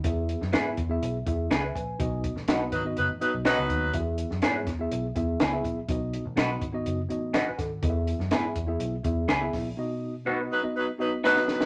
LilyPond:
<<
  \new Staff \with { instrumentName = "Tine electric piano" } { \time 4/4 \key e \major \tempo 4 = 123 << { r2. <gis' e''>8 <b' gis''>8~ | <b' gis''>8 r2. r8 | r1 | r2. <b' gis''>8 <a' fis''>8~ |
<a' fis''>8 r2. r8 | r1 | } \\ { <b e' gis' e''>8. r16 <b e' gis' e''>8 r16 <b e' gis' e''>8 r16 <b e' gis' e''>8 r4 | <b dis' fis' dis''>8. r16 <b dis' fis' dis''>8 r16 <b dis' fis' dis''>8 r16 <b dis' fis' dis''>8 r16 <b dis' fis' fis''>8 r16 | <b e' fis' gis' e''>8. r16 <b e' gis' cis''>8 r16 <b e' gis' e''>8 r16 <b e' gis' e''>8 r16 <b e' gis' e''>8 r16 | <b dis' fis' dis''>8. r16 <b dis' fis' dis''>8 r16 <b dis' fis' dis''>8 r16 <b dis' fis' dis''>8 r4 |
<b e' gis' dis'' e''>8. r16 <b e' gis' e''>8 r16 <b e' gis' e''>8 r16 <b e' gis' e''>8 r16 <b e' gis' e''>8 r16 | <b dis' fis' dis''>8. r16 <b dis' fis' dis''>8 r16 <b dis' fis' dis''>8 r16 <b dis' fis' dis''>8 r16 <b dis' fis' dis''>8 r16 | } >> }
  \new Staff \with { instrumentName = "Tine electric piano" } { \clef bass \time 4/4 \key e \major e4. r2 r8 | b,4. r2 r8 | e4. r2 r8 | b,4. r2 r8 |
e4. r2 r8 | b,4. r2 r8 | }
  \new Staff \with { instrumentName = "Clean electric guitar" } { \time 4/4 \key e \major r4 <b e' gis' b'>16 r4. r16 <b e' gis' b'>16 r8. | r4 <b dis' fis' b'>16 r4. r16 <b dis' fis' b'>16 r8. | r4 <b e' gis' b'>16 r4. r16 <b e' gis' b'>16 r8. | r4 <b dis' fis' b'>16 r4. r16 <b dis' fis' b'>16 r8. |
r4 <b e' gis' b'>16 r4. r16 <b e' gis' b'>16 r8. | r4 <b dis' fis' b'>16 r4. r16 <b dis' fis' b'>16 r8. | }
  \new Staff \with { instrumentName = "Saxophone section" } { \time 4/4 \key e \major r1 | r4. <fis dis' b'>16 r16 <fis dis' b'>16 r16 <fis dis' b'>16 r16 <fis dis' b'>4 | r1 | r1 |
r1 | r4. <fis dis' b'>16 r16 <fis dis' b'>16 r16 <fis dis' b'>16 r16 <fis dis' b'>4 | }
  \new Staff \with { instrumentName = "Picked electric bass" } { \clef bass \time 4/4 \key e \major e,8. fis,16 r8 e,8 b,,8 e,8 cis,8 ais,,8 | b,,8. a,,16 b,,8 gis,,8 fis,,16 a,,16 r16 b,,8 cis,16 dis,8 | e,8. fis,16 r8 e,8 b,,8 e,8 cis,8 ais,,8 | b,,8. a,,16 b,,8 gis,,8 fis,,8 a,,4 gis,,8 |
e,8. fis,16 gis,8 e,8 b,,8 e,8 cis,8 ais,,8 | r1 | }
  \new DrumStaff \with { instrumentName = "Drums" } \drummode { \time 4/4 <hh bd>8 hh16 sn16 <hh sn>8 <hh bd>8 hh8 <hh bd>8 <hh sn>8 <hh bd>8 | <hh bd>8 <hh bd>16 sn16 <hh sn>8 <hh bd>8 hh8 hh8 <hh sn>8 <hh bd>8 | <hh bd>8 hh16 sn16 <hh sn>8 <hh bd sn>8 hh8 <hh bd>8 <hh sn>8 <hh bd>8 | <hh bd>8 hh8 <hh sn>8 <hh bd>8 hh8 hh8 <hh sn>8 <hh bd sn>8 |
<hh bd>8 hh16 sn16 <hh sn>8 <hh bd>8 hh8 <hh bd>8 <hh sn>8 <hho bd sn>8 | r4 r4 r4 sn16 sn16 sn16 sn16 | }
>>